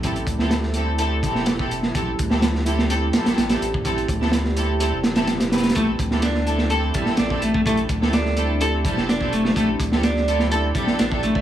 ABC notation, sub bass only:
X:1
M:4/4
L:1/16
Q:1/4=126
K:Am
V:1 name="Sub bass" clef=bass
A,,,2 D,,8 E,,,6 | A,,,2 D,,8 z A,,, A,,,2 A,,,2- | A,,,2 D,,6- D,, E,,,6- E,,, | A,,,2 D,,8 z A,,, A,,,2 A,,,2- |
A,,,2 D,,8 E,,,6 | A,,,2 D,,8 z A,,, A,,,2 A,,,2 |]